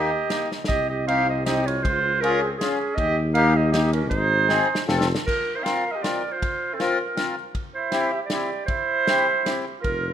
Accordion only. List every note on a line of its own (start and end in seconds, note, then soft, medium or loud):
0.00 0.11 A#3 medium
0.00 0.11 D#4 medium
0.00 0.12 G4 medium
0.29 0.49 A#3 medium
0.29 0.49 D#4 soft
0.29 0.50 G4 medium
1.07 1.27 C4 medium
1.07 1.27 D#4 medium
1.07 1.27 G4 medium
1.45 1.65 C4 medium
1.45 1.65 D#4 medium
1.45 1.66 G4 medium
2.23 2.41 C#4 medium
2.23 2.41 F4 medium
2.23 2.42 G#4 medium
2.60 2.78 C#4 medium
2.60 2.79 F4 medium
2.60 2.79 G#4 medium
3.34 3.53 A#3 medium
3.34 3.54 D#4 medium
3.34 3.54 G4 medium
3.71 3.91 A#3 medium
3.71 3.91 D#4 medium
3.71 3.92 G4 medium
4.48 4.68 C4 medium
4.48 4.68 D#4 medium
4.48 4.68 G#4 medium
4.87 5.08 C4 medium
4.87 5.08 F4 medium
4.87 5.08 A4 medium
5.63 5.84 C4 medium
5.63 5.84 F4 medium
5.63 5.85 A#4 medium
6.02 6.22 C4 soft
6.02 6.23 F4 soft
6.02 6.23 A#4 medium
6.79 6.98 C4 medium
6.79 6.98 F4 medium
6.79 6.99 A#4 medium
7.16 7.35 C4 soft
7.16 7.36 F4 soft
7.16 7.36 A#4 medium
7.91 8.11 C4 medium
7.91 8.11 E4 medium
7.91 8.12 G4 medium
8.31 8.50 C4 medium
8.31 8.50 E4 medium
8.31 8.50 G4 medium
9.07 9.27 C4 medium
9.07 9.27 E4 medium
9.07 9.27 G4 medium
9.45 9.65 C4 medium
9.45 9.65 E4 soft
9.45 9.66 G4 medium